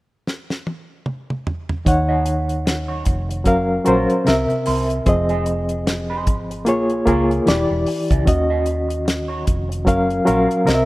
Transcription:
0.27 snare
0.50 snare
0.67 high tom
1.06 mid tom
1.30 mid tom
1.47 floor tom
1.69 floor tom
1.85 fingered electric bass D#2, reed electric piano D#3 D#4 C#5 F#5, muted clean electric guitar stroke, kick, closed hi-hat
2.08 clean electric guitar D#4 F#4 D#5
2.25 muted clean electric guitar stroke, closed hi-hat
2.48 muted clean electric guitar stroke, closed hi-hat
2.66 muted clean electric guitar stroke, snare, closed hi-hat
2.88 clean electric guitar D#4 F#4 C#5
3.05 fingered electric bass F1, muted clean electric guitar stroke, kick, closed hi-hat
3.29 muted clean electric guitar stroke, closed hi-hat
3.44 fingered electric bass F#1, reed electric piano F#3 C#4 A#4 F5, kick, closed hi-hat
3.69 muted clean electric guitar stroke
3.84 fingered electric bass A#1, reed electric piano F#3 C#4 A#4 C5, clean electric guitar F4 A#4 C#5, closed hi-hat
4.09 muted clean electric guitar stroke, closed hi-hat
4.25 fingered electric bass C2, reed electric piano C3 C4 A#4 E5, muted clean electric guitar stroke, snare, closed hi-hat
4.49 muted clean electric guitar stroke, muted fingered electric bass stroke, closed hi-hat
4.66 fingered electric bass C2, clean electric guitar E4 A#4 C5, open hi-hat
4.89 muted clean electric guitar stroke, closed hi-hat
5.06 fingered electric bass F1, reed electric piano F3 C4 G#4 D#5, muted clean electric guitar stroke, kick, closed hi-hat
5.29 clean electric guitar D#4 G#4 D#5, closed hi-hat
5.46 muted clean electric guitar stroke, closed hi-hat
5.69 muted clean electric guitar stroke, closed hi-hat
5.86 muted clean electric guitar stroke, snare, closed hi-hat
6.10 clean electric guitar D#4 G#4 C5
6.27 fingered electric bass G#1, muted clean electric guitar stroke, kick, closed hi-hat
6.50 muted clean electric guitar stroke, closed hi-hat
6.65 fingered electric bass A#1, reed electric piano A#3 F4 G#4 C#5, closed hi-hat
6.90 muted clean electric guitar stroke, closed hi-hat
7.05 fingered electric bass C#2, reed electric piano A#3 F4 G#4 A#4, clean electric guitar F4 G#4 C#5, kick, closed hi-hat
7.30 muted clean electric guitar stroke, closed hi-hat
7.46 fingered electric bass E1, reed electric piano E3 E4 G4 D5, clean electric guitar E4 G4 D5, snare, closed hi-hat
7.71 fingered electric bass E1
7.86 muted clean electric guitar stroke, open hi-hat
8.10 fingered electric bass C#2, clean electric guitar E4 G4 D5, kick, closed hi-hat
8.25 fingered electric bass D#2, reed electric piano D#3 C#4 F#4 D#5, muted clean electric guitar stroke, kick, closed hi-hat
8.50 clean electric guitar D#4 F#4 D#5
8.66 muted clean electric guitar stroke, closed hi-hat
8.89 muted clean electric guitar stroke, closed hi-hat
9.05 muted clean electric guitar stroke, snare, closed hi-hat
9.28 clean electric guitar D#4 F#4 C#5
9.46 fingered electric bass F1, muted clean electric guitar stroke, kick, closed hi-hat
9.69 muted clean electric guitar stroke, closed hi-hat
9.85 fingered electric bass F#1, reed electric piano F#3 C#4 A#4 F5, kick, closed hi-hat
10.08 muted clean electric guitar stroke, closed hi-hat
10.25 fingered electric bass A#1, reed electric piano F#3 C#4 A#4 F5, clean electric guitar F4 A#4 C#5, closed hi-hat
10.48 muted clean electric guitar stroke, closed hi-hat
10.65 fingered electric bass C2, reed electric piano C3 C4 A#4 D#5, muted clean electric guitar stroke, snare, closed hi-hat
10.74 reed electric piano E5

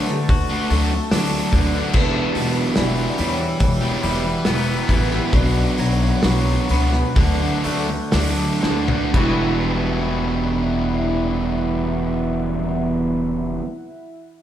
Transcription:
Already playing: upright bass D3, distorted electric guitar D3, clean electric guitar A3, ambient pad D4 A4 F#5 A5, vibraphone B4
0.07 muted distorted electric guitar stroke, snare
0.29 upright bass D2, clean electric guitar F#4, kick, open hi-hat
0.50 distorted electric guitar A3 D4 F#4
0.70 upright bass D2, distorted electric guitar F#3 A3 D4 F#4, vibraphone A4, open hi-hat
0.92 muted distorted electric guitar stroke
1.11 upright bass D2, distorted electric guitar D3 F#3 A3 D4 F#4, snare, open hi-hat
1.52 upright bass D2, clean electric guitar D3, distorted electric guitar F#3 A3 D4 F#4, vibraphone B4, kick, open hi-hat
1.73 distorted electric guitar A3 D4 F#4
1.93 upright bass E1, clean electric guitar E2, distorted electric guitar E3 B3 E4 G4, vibraphone B4, ambient pad B4 F#5 G5 E6, kick, crash
2.35 upright bass E1, clean electric guitar B2, open hi-hat
2.76 upright bass E1, distorted electric guitar E3 B3 E4 G4, vibraphone D5, snare, open hi-hat
3.18 upright bass E2, distorted electric guitar E3 B3 E4 G4, clean electric guitar G3, vibraphone C#5, open hi-hat
3.39 muted distorted electric guitar stroke
3.60 upright bass E1, kick, open hi-hat
3.81 distorted electric guitar B3 E4 G4
4.03 upright bass E1, distorted electric guitar E3 B3 E4 G4, clean electric guitar G3, vibraphone B4, open hi-hat
4.25 muted distorted electric guitar stroke
4.45 upright bass E1, distorted electric guitar E3 B3 E4 G4, snare, open hi-hat
4.88 upright bass A1, distorted electric guitar E3 B3 E4 G4, vibraphone B4, kick, open hi-hat
5.11 distorted electric guitar B3 E4 G4, snare
5.32 upright bass B1, distorted electric guitar B2 F#3 B3 D4 F#4, ambient pad D4, vibraphone D5, kick, open hi-hat
5.77 upright bass B1, clean electric guitar F#3, open hi-hat
6.23 upright bass B1, distorted electric guitar B2 F#3 B3 D4 F#4, snare, open hi-hat
6.68 upright bass C#2, distorted electric guitar F#3 B3 D4 F#4, vibraphone B4, open hi-hat
6.93 muted distorted electric guitar stroke, snare
7.15 upright bass D2, distorted electric guitar D3 F#3 A3 D4 F#4, ambient pad A4, kick, open hi-hat
7.39 distorted electric guitar A3 D4 F#4
7.63 upright bass D2, distorted electric guitar F#3 A3 D4 F#4, vibraphone A4, open hi-hat
7.89 muted distorted electric guitar stroke
8.12 upright bass D2, distorted electric guitar D3 F#3 A3 D4 F#4, snare, open hi-hat
8.62 upright bass D2, clean electric guitar D3, distorted electric guitar F#3 A3 D4 F#4, vibraphone B4, snare
8.88 distorted electric guitar A3 D4 F#4, floor tom
9.13 upright bass E1, clean electric guitar E2 B2, distorted electric guitar E3 G3 B3 E4, ambient pad E3 E4 E5 F#5, vibraphone E4, kick, crash
9.17 clean electric guitar F#4

